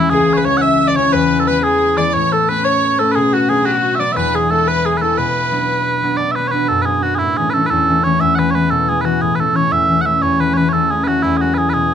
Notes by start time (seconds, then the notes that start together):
Already playing: E2 E3 G#3 B3 C#4 E4
0.10 C#2 G#4
0.33 C#5
0.37 B4
0.44 E3 G#3 C#4 C#5
0.57 F#5
0.62 E5
0.87 D5
0.96 E3 G#3 C#4 C#5
1.13 E2 B4
1.39 A4
1.47 E3 G#3 B3 B4
1.62 G#4
1.97 E3 G#3 B3 D5
2.09 D5
2.14 A2 C#5
2.32 A4
2.48 A3 B3 C#4 B4
2.65 C#5
2.99 A3 B3 C#4 A4
3.11 G#4 B4
3.16 B2
3.33 F#4
3.49 F#3 B3 D4 G#4
3.65 F#4
3.95 E5
4.00 F#3 B3 D4 D5
4.12 B4 E5
4.16 E2 B4
4.34 G#4
4.50 G#3 B3 E4 A4
4.67 B4
4.85 G#4
4.97 G#3 B3 A4 B4
5.01 E4 A4
5.17 B2 B4
5.51 F#3 B3 D4
6.03 F#3 B3 D4
6.17 B2 D5
6.31 E5
6.36 F#3 B3 D4 B4
6.48 B4 C#5
6.53 F#3 B3 D4
6.68 F#2 A4
6.82 G#4 B4
6.87 F#3 B3 D4
7.03 F#3 B3 D4 F#4
7.15 E4 G#4
7.21 A2
7.37 E3 A3 C#4 G#4
7.50 A4 B4
7.55 E3 A3 C#4
7.66 A4 B4
7.71 E2
7.89 E3 A3 C#4
8.04 E3 A3 C#4 C#5
8.20 E2 E5
8.35 E3 G#3 B3 B4 F#5
8.51 E3 G#3 C#5
8.55 B3 B4
8.70 B2 A4
8.88 E3 G#3 B3 G#4
9.01 E3 B4
9.05 G#3 B3 F#4
9.21 A2 G#4
9.35 E3 B4
9.39 A3 C#4 A4
9.55 E3 A3 C#4 C#5
9.71 E2 E5
9.89 E3 A3 C#4
10.01 E3 F#5
10.06 A3 C#4 E5
10.22 E2 C#5
10.40 E3 A3 C#4 B4
10.54 E3 A3 C#4 B4 C#5
10.69 A4 C#5
10.73 E2
10.91 E3 A3 C#4 G#4
11.04 E3 F#4 B4
11.08 A3 C#4
11.23 E2 E4
11.37 F#4 G#4
11.42 F#3 G#3 E4
11.54 F#3 G#3 G#4 B4
11.58 E4
11.69 G#4 B4
11.74 B2